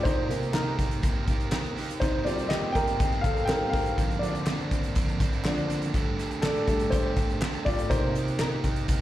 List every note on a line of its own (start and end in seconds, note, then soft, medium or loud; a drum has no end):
0.03 0.29 C3 medium
0.03 0.30 A#3 medium
0.03 0.51 D#4 medium
0.03 0.30 D#4 medium
0.03 0.27 G4 medium
0.03 0.29 A#4 medium
0.03 0.55 C5 loud
0.03 kick loud
0.03 closed hi-hat medium
0.28 1.97 C3 soft
0.28 1.97 D#3 soft
0.28 1.98 A#3 medium
0.28 0.53 D#4 soft
0.28 0.53 G4 medium
0.28 0.54 A#4 medium
0.28 closed hi-hat medium
0.42 closed hi-hat soft
0.53 0.78 A#3 medium
0.53 0.79 D#4 medium
0.53 1.00 D#4 medium
0.53 0.76 G4 medium
0.53 0.99 A#4 medium
0.53 0.78 A#4 medium
0.53 snare loud
0.53 clap medium
0.77 1.02 D#4 medium
0.77 1.03 G4 medium
0.77 1.02 A#4 medium
0.77 kick medium
0.77 closed hi-hat medium
0.91 closed hi-hat medium
1.02 1.27 C3 medium
1.02 1.27 A#3 medium
1.02 1.28 D#4 medium
1.02 1.26 G4 medium
1.02 1.27 A#4 medium
1.02 kick medium
1.02 closed hi-hat medium
1.27 1.52 D#4 medium
1.27 1.52 G4 soft
1.27 1.53 A#4 medium
1.27 kick medium
1.27 closed hi-hat medium
1.40 closed hi-hat soft
1.52 1.76 A#3 medium
1.52 1.77 D#4 medium
1.52 1.75 G4 medium
1.52 1.76 A#4 medium
1.52 snare loud
1.52 clap medium
1.65 closed hi-hat soft
1.76 2.02 D#4 soft
1.76 2.01 G4 medium
1.76 2.02 A#4 soft
1.76 snare soft
1.76 open hi-hat medium
1.90 closed hi-hat medium
2.00 2.26 C3 medium
2.00 2.26 D#3 medium
2.00 2.26 A#3 medium
2.00 2.26 C4 medium
2.00 2.25 D#4 medium
2.00 2.26 G4 medium
2.00 2.26 C5 medium
2.00 2.25 C5 medium
2.00 kick medium
2.00 closed hi-hat medium
2.25 2.59 D#3 soft
2.25 2.59 G3 soft
2.25 2.50 A#3 soft
2.25 2.59 C4 medium
2.25 2.49 F4 medium
2.25 2.51 G4 medium
2.25 2.51 C5 medium
2.25 2.51 D5 medium
2.25 closed hi-hat medium
2.29 2.49 C4 soft
2.38 closed hi-hat soft
2.49 2.76 A#3 medium
2.49 2.75 C4 medium
2.49 2.57 G4 medium
2.49 2.75 G4 medium
2.49 2.54 D#5 medium
2.49 snare loud
2.49 clap medium
2.53 2.74 C5 medium
2.72 3.00 G4 medium
2.72 3.21 A#4 medium
2.72 2.99 C5 medium
2.72 3.24 G5 loud
2.72 kick medium
2.72 closed hi-hat medium
2.77 2.99 A#3 medium
2.77 2.99 C4 soft
2.87 closed hi-hat medium
2.99 3.24 C3 medium
2.99 3.24 D#3 medium
2.99 3.25 A#3 medium
2.99 3.25 C4 medium
2.99 3.24 G4 medium
2.99 3.23 C5 medium
2.99 kick loud
2.99 closed hi-hat medium
3.12 closed hi-hat soft
3.21 3.47 A4 medium
3.21 3.49 C5 medium
3.21 3.48 F5 medium
3.21 kick medium
3.21 closed hi-hat medium
3.25 3.48 A#3 soft
3.25 3.47 C4 soft
3.25 3.49 G4 medium
3.37 closed hi-hat soft
3.45 3.70 D#3 soft
3.45 3.71 G3 soft
3.45 3.73 C4 medium
3.45 3.71 C4 medium
3.45 3.72 A#4 medium
3.45 3.72 G5 medium
3.45 clap medium
3.49 3.73 A#3 medium
3.49 3.73 G4 medium
3.49 3.72 C5 medium
3.49 snare loud
3.49 clap medium
3.70 4.19 A#4 medium
3.70 3.98 C5 medium
3.70 4.22 F5 medium
3.70 kick loud
3.70 open hi-hat medium
3.74 3.97 A#3 soft
3.74 3.96 C4 soft
3.74 3.98 G4 medium
3.74 snare soft
3.86 closed hi-hat soft
3.97 4.22 D3 medium
3.97 4.22 F3 medium
3.97 4.22 A#3 medium
3.97 4.22 C4 medium
3.97 4.21 D4 medium
3.97 4.20 C5 loud
3.97 kick medium
3.97 closed hi-hat medium
4.11 closed hi-hat soft
4.19 4.55 D3 soft
4.19 4.55 F3 soft
4.19 4.47 D4 medium
4.19 4.55 D4 medium
4.19 5.66 F4 medium
4.19 4.46 C5 medium
4.19 5.64 D5 medium
4.19 closed hi-hat medium
4.23 4.47 A#3 medium
4.23 4.45 C4 soft
4.35 closed hi-hat soft
4.46 4.72 A#3 medium
4.46 4.71 C4 medium
4.46 4.71 D4 medium
4.46 4.70 C5 medium
4.46 snare loud
4.46 clap medium
4.60 closed hi-hat soft
4.71 4.96 A#3 soft
4.71 4.95 C4 soft
4.71 4.96 D4 medium
4.71 4.96 C5 medium
4.71 kick medium
4.71 closed hi-hat medium
4.83 closed hi-hat medium
4.95 5.20 D3 medium
4.95 5.21 F3 medium
4.95 5.21 A#3 loud
4.95 5.21 C4 loud
4.95 5.19 D4 loud
4.95 5.19 C5 medium
4.95 kick loud
4.95 closed hi-hat medium
5.08 closed hi-hat soft
5.20 5.44 A#3 soft
5.20 5.44 C4 soft
5.20 5.45 D4 medium
5.20 5.45 C5 medium
5.20 kick medium
5.20 closed hi-hat medium
5.33 closed hi-hat soft
5.45 5.67 D3 soft
5.45 5.68 F3 soft
5.45 5.69 A#3 medium
5.45 5.70 C4 medium
5.45 5.68 D4 medium
5.45 5.67 C5 medium
5.45 snare loud
5.45 clap medium
5.58 closed hi-hat soft
5.68 5.94 A#3 soft
5.68 5.93 C4 soft
5.68 5.93 D4 soft
5.68 5.94 C5 soft
5.68 closed hi-hat medium
5.82 closed hi-hat medium
5.93 6.18 G2 medium
5.93 6.19 G3 medium
5.93 6.18 A3 medium
5.93 6.18 D4 medium
5.93 6.16 G4 medium
5.93 6.17 A4 medium
5.93 kick medium
5.93 closed hi-hat medium
6.17 6.41 A3 soft
6.17 6.42 D4 medium
6.17 6.43 G4 medium
6.17 6.43 A4 medium
6.17 closed hi-hat medium
6.31 closed hi-hat soft
6.42 6.67 A3 medium
6.42 6.68 D4 medium
6.42 6.67 D4 medium
6.42 6.66 G4 medium
6.42 6.93 A4 medium
6.42 6.67 A4 medium
6.42 snare loud
6.42 clap medium
6.55 closed hi-hat soft
6.67 7.00 G3 medium
6.67 7.01 A3 soft
6.67 6.91 A3 soft
6.67 7.01 D4 medium
6.67 6.92 D4 soft
6.67 6.92 G4 medium
6.67 6.92 A4 medium
6.67 kick medium
6.67 closed hi-hat medium
6.79 closed hi-hat medium
6.90 7.17 G2 medium
6.90 7.17 G3 medium
6.90 7.17 A3 medium
6.90 7.17 D4 medium
6.90 7.38 G4 medium
6.90 7.15 G4 loud
6.90 7.16 A4 medium
6.90 7.37 C5 medium
6.90 kick medium
6.90 closed hi-hat medium
7.16 7.40 A3 medium
7.16 7.42 D4 soft
7.16 7.41 G4 medium
7.16 7.42 A4 medium
7.16 kick medium
7.16 closed hi-hat medium
7.29 closed hi-hat soft
7.41 7.66 A3 medium
7.41 7.67 D4 medium
7.41 7.65 G4 medium
7.41 7.66 A4 medium
7.41 snare loud
7.41 clap medium
7.54 closed hi-hat soft
7.65 7.92 D4 soft
7.65 7.72 F4 medium
7.65 7.91 G4 medium
7.65 7.92 A4 soft
7.65 7.71 D5 medium
7.65 kick medium
7.65 open hi-hat medium
7.69 7.91 A3 soft
7.79 closed hi-hat medium
7.89 8.23 C3 medium
7.89 8.15 C3 medium
7.89 8.23 A#3 soft
7.89 8.16 A#3 medium
7.89 8.23 D#4 medium
7.89 8.16 D#4 medium
7.89 8.14 G4 medium
7.89 8.16 A#4 medium
7.89 8.36 C5 loud
7.89 kick loud
7.89 closed hi-hat medium
8.15 8.39 D#4 soft
8.15 8.40 G4 medium
8.15 8.40 A#4 soft
8.15 closed hi-hat medium
8.28 closed hi-hat soft
8.39 8.64 A#3 medium
8.39 8.86 D#4 medium
8.39 8.65 D#4 medium
8.39 8.62 G4 medium
8.39 8.85 A#4 medium
8.39 8.64 A#4 medium
8.39 snare loud
8.39 clap medium
8.64 8.87 D#4 soft
8.64 8.88 G4 medium
8.64 8.88 A#4 soft
8.64 kick medium
8.64 closed hi-hat medium
8.76 closed hi-hat medium
8.87 9.01 C3 medium
8.87 9.01 A#3 medium
8.87 9.01 D#4 medium
8.87 9.01 G4 medium
8.87 9.01 A#4 medium
8.87 kick medium
8.87 closed hi-hat medium